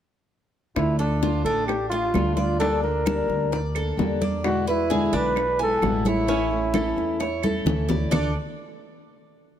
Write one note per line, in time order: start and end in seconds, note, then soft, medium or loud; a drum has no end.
0.76 1.41 D2 medium
0.76 0.98 D3 medium
0.76 0.98 A3 medium
0.76 0.98 D4 medium
0.76 0.98 E4 medium
0.76 0.97 F4 medium
0.76 high bongo medium
0.76 high conga soft
0.76 claves medium
0.98 1.21 A3 soft
0.98 1.42 D4 medium
0.98 1.21 D4 soft
0.98 1.21 F4 soft
0.98 1.21 A4 medium
0.98 high conga soft
1.22 1.67 D3 medium
1.22 1.67 A3 medium
1.22 1.67 D4 medium
1.22 1.45 F4 medium
1.22 1.68 F4 medium
1.22 high bongo medium
1.22 high conga medium
1.44 2.10 A1 medium
1.44 1.90 D4 medium
1.44 1.66 A4 medium
1.44 high bongo soft
1.44 high conga soft
1.67 1.89 G4 medium
1.67 muted steel-string acoustic guitar stroke medium
1.67 high bongo medium
1.67 high conga soft
1.67 claves medium
1.90 2.14 A3 soft
1.90 2.13 D4 soft
1.90 2.33 F4 medium
1.90 2.13 F4 soft
1.90 2.36 F4 medium
1.90 high conga soft
2.14 3.23 D2 medium
2.14 2.36 D3 medium
2.14 2.37 A3 medium
2.14 2.36 D4 medium
2.14 2.36 F4 medium
2.14 high bongo soft
2.14 low bongo medium
2.14 high conga medium
2.14 claves medium
2.35 2.60 A3 soft
2.35 2.60 D4 soft
2.35 2.58 F4 medium
2.35 2.59 F4 soft
2.35 2.59 D5 medium
2.35 high bongo soft
2.35 high conga medium
2.59 2.82 D3 medium
2.59 2.82 G3 medium
2.59 2.83 A#3 medium
2.59 3.05 D4 medium
2.59 2.83 D4 medium
2.59 2.81 A4 loud
2.59 2.82 A4 medium
2.59 high bongo medium
2.59 high conga soft
2.83 3.06 A#3 soft
2.83 3.06 D4 soft
2.83 3.05 A4 soft
2.83 3.71 A#4 medium
2.83 high conga soft
3.06 3.51 D3 medium
3.06 3.51 G3 medium
3.06 3.51 A#3 medium
3.06 3.51 D4 medium
3.06 3.51 A5 medium
3.06 high bongo medium
3.06 high conga medium
3.06 claves medium
3.28 3.94 D2 medium
3.28 high bongo soft
3.28 high conga soft
3.52 3.75 D5 medium
3.52 muted steel-string acoustic guitar stroke medium
3.52 high bongo medium
3.52 high conga soft
3.75 3.97 A#3 soft
3.75 3.97 D4 soft
3.75 3.97 A4 soft
3.75 4.20 A4 medium
3.75 high conga soft
3.75 claves medium
3.97 5.07 E2 medium
3.97 4.20 D3 medium
3.97 4.20 G3 medium
3.97 4.20 A#3 medium
3.97 4.21 D4 medium
3.97 4.20 A4 medium
3.97 high bongo soft
3.97 low bongo medium
3.97 high conga medium
4.21 4.44 A#3 soft
4.21 4.44 D4 soft
4.21 4.43 A4 soft
4.21 4.66 D5 medium
4.21 high bongo soft
4.21 high conga medium
4.44 4.66 B2 medium
4.44 4.66 D3 medium
4.44 4.67 G#3 medium
4.44 4.67 B3 medium
4.44 4.67 E4 medium
4.44 4.66 F#4 medium
4.44 high bongo medium
4.44 high conga soft
4.44 claves medium
4.67 4.89 G#3 soft
4.67 4.89 B3 soft
4.67 4.90 E4 soft
4.67 5.17 E4 medium
4.67 4.90 B4 medium
4.67 high conga soft
4.90 5.35 B2 medium
4.90 5.35 D3 medium
4.90 5.35 G#3 medium
4.90 5.36 B3 medium
4.90 5.36 E4 medium
4.90 5.13 G#4 medium
4.90 high bongo medium
4.90 high conga medium
5.13 5.78 B1 medium
5.13 5.58 D4 medium
5.13 5.61 B4 loud
5.13 high bongo soft
5.13 high conga soft
5.36 muted steel-string acoustic guitar stroke medium
5.36 high bongo medium
5.36 high conga soft
5.36 claves medium
5.59 5.82 G#3 soft
5.59 5.82 B3 soft
5.59 5.82 E4 soft
5.59 6.09 A4 loud
5.59 6.04 G#5 medium
5.59 high conga soft
5.82 6.91 A1 medium
5.82 6.04 B2 medium
5.82 6.05 D3 medium
5.82 6.05 G#3 medium
5.82 6.05 B3 medium
5.82 6.04 E4 medium
5.82 high bongo soft
5.82 low bongo medium
5.82 high conga medium
5.82 claves medium
6.05 6.27 G#3 soft
6.05 6.28 B3 soft
6.05 6.27 E4 soft
6.05 7.68 E4 medium
6.05 6.28 C#5 medium
6.05 high bongo soft
6.05 high conga medium
6.27 6.50 E3 medium
6.27 6.50 A3 medium
6.27 6.50 C#4 medium
6.27 6.73 C#4 medium
6.27 6.50 E4 medium
6.27 high bongo medium
6.27 high conga soft
6.51 6.74 A3 soft
6.51 6.74 C#4 soft
6.51 6.73 E4 soft
6.51 high conga soft
6.74 7.19 E3 medium
6.74 7.19 A3 medium
6.74 7.19 C#4 medium
6.74 7.20 E4 medium
6.74 7.19 A4 medium
6.74 high bongo medium
6.74 high conga medium
6.74 claves medium
6.96 7.62 E2 medium
6.96 high bongo soft
6.96 high conga soft
7.20 7.43 C#5 medium
7.20 muted steel-string acoustic guitar stroke medium
7.20 high bongo medium
7.20 high conga soft
7.43 7.65 A3 soft
7.43 7.66 C#4 soft
7.43 7.65 E4 soft
7.43 7.88 A4 medium
7.43 high conga medium
7.43 claves medium
7.65 8.06 D2 medium
7.65 7.88 E3 medium
7.65 7.89 A3 medium
7.65 7.89 C#4 medium
7.65 7.88 E4 medium
7.65 high bongo medium
7.65 low conga loud
7.89 8.11 A3 soft
7.89 8.12 C#4 soft
7.89 8.11 E4 medium
7.89 8.11 D5 medium
7.89 low bongo medium
7.89 low conga medium
8.11 8.33 D2 medium
8.11 8.31 D3 medium
8.11 8.31 A3 medium
8.11 8.33 D4 medium
8.11 8.34 D4 medium
8.11 8.31 D4 medium
8.11 8.31 F4 medium
8.11 8.33 A4 medium
8.11 8.34 D5 medium
8.11 low bongo medium
8.11 low conga loud
8.11 claves medium